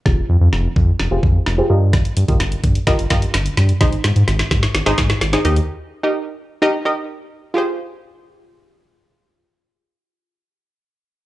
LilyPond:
<<
  \new Staff \with { instrumentName = "Synth pluck" } { \time 4/4 \key f \minor \tempo 4 = 128 <f' g' aes' c''>4. r8. <f' g' aes' c''>8. r16 <f' g' aes' c''>16 <f' g' bes' ees''>8~ | <f' g' bes' ees''>8 r16 <f' g' bes' ees''>4 r16 <f' g' bes' ees''>16 r16 <f' g' bes' ees''>4 r8 | <ees' aes' c'' ees''>4. r8. <ees' aes' c'' ees''>8. r16 <ees' aes' c'' ees''>16 <ees' g' bes' ees''>8~ | <ees' g' bes' ees''>8 r16 <ees' g' bes' ees''>4 r16 <ees' g' bes' ees''>16 r16 <ees' g' bes' ees''>4 r8 |
<f' g' aes' c''>1~ | <f' g' aes' c''>1 | }
  \new Staff \with { instrumentName = "Analog synth bass" } { \clef bass \time 4/4 \key f \minor f,,8 f,16 f,16 f,,8 f,8 f,,16 f,,16 f,8 f,,8 g,8~ | g,8 g,16 g,16 g,,8 g,8 g,,16 g,,16 g,8 g,,8 g,8 | aes,,8 aes,16 aes,16 aes,,8 aes,8 aes,,16 aes,,16 aes,8 aes,,8 ees,8 | r1 |
r1 | r1 | }
  \new DrumStaff \with { instrumentName = "Drums" } \drummode { \time 4/4 <bd sn>4 sn8 bd8 sn8 bd8 sn4 | <hh bd sn>16 hh16 hh16 <hh bd>16 <hh sn>16 hh16 <hh bd>16 hh16 <hh bd sn>16 hh16 <hh bd sn>16 hh16 <hh sn>16 hh16 <hh sn>16 hh16 | <hh bd sn>16 hh16 <hh sn>16 hh16 <hh sn>16 <hh sn>16 <hh bd sn>16 <hh sn>16 <hh sn>16 <hh sn>16 <hh bd sn>16 <hh sn>16 <hh sn>16 <hh sn>16 hh16 hh16 | r4 r4 r4 r4 |
r4 r4 r4 r4 | r4 r4 r4 r4 | }
>>